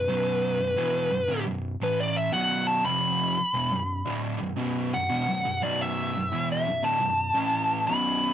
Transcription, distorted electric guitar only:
X:1
M:4/4
L:1/16
Q:1/4=86
K:Bm
V:1 name="Distorted electric guitar" clef=bass
[B,,,F,,B,,]3 [B,,,F,,] [E,,B,,E,]2 [B,,,F,,] [D,,A,,] [B,,,F,,]2 [A,,E,A,]3 [B,,,F,,B,,]3 | [^E,,=C,^E,]3 z [=E,,B,,] [B,,,F,,]2 [D,,A,,D,]2 [B,,,F,,] [B,,,F,,B,,]2 [B,,,F,,] [E,,B,,] [B,,,F,,] [B,,,F,,] | [B,,,F,,B,,]3 [B,,,F,,] [E,,B,,E,]2 [B,,,F,,] [D,,A,,] [B,,,F,,]2 [A,,E,A,]3 [B,,,F,,B,,]3 |]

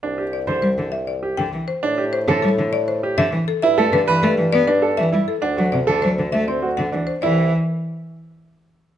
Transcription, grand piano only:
X:1
M:3/4
L:1/16
Q:1/4=100
K:Clyd
V:1 name="Grand piano"
D G z c z4 G z3 | D G z A z4 G z3 | E A z B z3 D A z E z | D F z A z3 C F z D z |
E2 z8 z2 |]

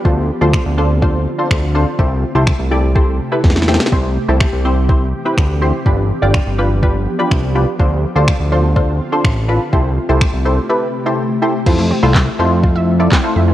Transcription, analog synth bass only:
X:1
M:4/4
L:1/16
Q:1/4=124
K:Am
V:1 name="Analog synth bass" clef=bass
D,,3 D,,2 D,,6- D,, D,,4 | C,,3 C,,2 C,,6- C,, E,,4 | C,,3 C,,2 C,,6- C,, D,,4 | G,,,3 G,,,2 G,,,6- G,,, C,,4 |
D,,3 D,,2 D,,6- D,, A,,,4 | C,,3 C,,2 C,,3 z8 | F,,3 C,,3 F,,8 F,,2 |]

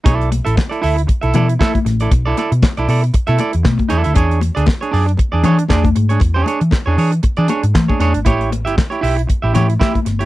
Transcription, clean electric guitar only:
X:1
M:4/4
L:1/16
Q:"Swing 16ths" 1/4=117
K:Bm
V:1 name="Clean electric guitar"
[EAd]2 z [EAe] z [EAd] [EAe] z2 [EAe] [EAd] z [EAe] z2 [EAd] | z [EAd] [EAd] z2 [EAd] [EAd] z2 [EAe] [EAd] z3 [EAd] [EAe] | [D^Gc]2 z [DGd] z [DGc] [DGd] z2 [DGd] [DGc] z [DGd] z2 [DGc] | z [D^Gc] [DGc] z2 [DGc] [DGc] z2 [DGd] [DGc] z2 [DGc] [DGc] z |
[EGc]2 z [EGe] z [EGc] [EGe] z2 [EGe] [EGc] z [EGe] z2 [EGc] |]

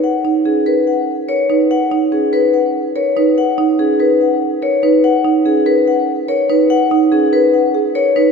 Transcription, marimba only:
X:1
M:4/4
L:1/8
Q:1/4=144
K:B
V:1 name="Marimba"
z D C A z2 A D | z D C A z2 A D | z D C A z2 A D | z D C A z2 A D |
z D C A z G A D |]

